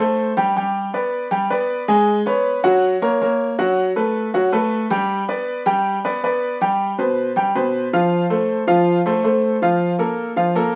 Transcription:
0.00 A3 A4 C5
0.37 G3 G4 G5
0.56 G3 G4 G5
0.94 B3 B4 D5
1.31 G3 G4 G5
1.50 B3 B4 D5
1.88 G#3 G#4 G#5
2.26 B3 B4 C#5
2.63 F#3 F#4 F#5
3.02 A#3 A#4 C#5
3.21 A#3 A#4 C#5
3.59 F#3 F#4 F#5
3.96 A3 A4 B4
4.34 F#3 F#4 F#5
4.52 A3 A4 B4
4.90 G3 G4 G5
5.28 B3 B4 D5
5.66 G3 G4 G5
6.05 B3 B4 D5
6.24 B3 B4 D5
6.61 G3 G4 G5
6.98 B2 B4 C5
7.36 G3 G4 G5
7.55 B2 B4 C5
7.93 F3 F4 F5
8.30 A3 A4 C5
8.67 F3 F4 F5
9.06 A3 A4 C5
9.24 A3 A4 C5
9.62 F3 F4 F5
9.99 A#3 A4 A#4
10.36 F3 F4 F5
10.55 A#3 A4 A#4

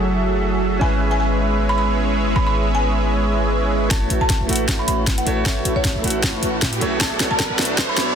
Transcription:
Already playing: F#1 F#3 A3 E4 F#4 G#4 A4 E5 G#5
0.04 closed hi-hat
0.23 closed hi-hat
0.42 closed hi-hat
0.53 closed hi-hat
0.62 closed hi-hat
0.79 G#1 G#3 B3 C#4 E4 G#4 B4 C#5 E5 G#5, closed hi-hat
0.83 B4
1.00 closed hi-hat
1.11 G#5
1.20 G#5, closed hi-hat
1.39 closed hi-hat
1.43 closed hi-hat
1.46 closed hi-hat
1.58 closed hi-hat
1.69 B5
1.78 B5, closed hi-hat
1.97 closed hi-hat
2.08 closed hi-hat
2.36 G#1 B5, closed hi-hat
2.47 B5
2.55 closed hi-hat
2.75 G#5, closed hi-hat
2.94 closed hi-hat
2.98 closed hi-hat
3.01 closed hi-hat
3.14 closed hi-hat
3.33 closed hi-hat
3.52 closed hi-hat
3.63 closed hi-hat
3.71 closed hi-hat
3.89 A1 A3 C#4 E4 F#4 C#5 A5, kick, snare, closed hi-hat, riser
4.10 A1 A3 E4 F#4 B4 E5, closed hi-hat
4.21 A1 A3 E4 F#4 B4 F#5 A5
4.30 kick, snare, closed hi-hat
4.40 A1 A3 E4 F#4 B4 E5
4.47 A1 A3 E4 F#4 B4 E5, closed hi-hat
4.51 F#5, closed hi-hat
4.56 closed hi-hat
4.68 A1 A3 E4 F#4 B4 C#5, kick, snare, closed hi-hat
4.79 B5
4.88 A1 A3 E4 F#4 B4 C#5 B5, closed hi-hat
5.07 A1, kick, snare, closed hi-hat
5.18 F#5, closed hi-hat
5.26 A1 A3 E4 F#4 B4 C#5 E5, closed hi-hat
5.44 A1 A3 C#5 E5, kick, snare, closed hi-hat
5.65 A1 A3 E4 F#4 B4 E5, closed hi-hat
5.76 A1 A3 E4 F#4 B4 C#5 F#5
5.85 kick, snare, closed hi-hat
5.95 A1 A3 E4 F#4 B4 E5
6.02 A1 A3 E4 F#4 B4 E5, closed hi-hat
6.06 F#5, closed hi-hat
6.10 closed hi-hat
6.23 A1 A3 E4 F#4 B4 C#5, kick, snare, closed hi-hat
6.42 A1 A3 E4 F#4 B4 C#5, closed hi-hat
6.62 A2 A3 E4 E5, kick, snare, closed hi-hat
6.73 closed hi-hat
6.80 B1 A3 E4 F#4 B4 C#5 E5, closed hi-hat
6.99 B1 B2 A3 B3 D4 E4 A5, kick, snare, closed hi-hat
7.03 C#5
7.20 B1 B3 F#4 A4 C#5 D5 F#5, snare, closed hi-hat
7.31 B1 B3 F#4 A4 C#5 D5 G#5 A5
7.39 kick, snare, closed hi-hat
7.50 B1 B3 F#4 A4 C#5 D5 F#5
7.57 B1 B2 A3 B3 D4 E4 F#4 A4 C#5 D5 E5 F#5, snare, closed hi-hat
7.62 closed hi-hat
7.65 closed hi-hat
7.78 B1 B3 F#4, kick, snare, closed hi-hat
7.89 B5
7.97 B1 B3 F#4 A4 C#5 D5 E5 B5, snare, closed hi-hat

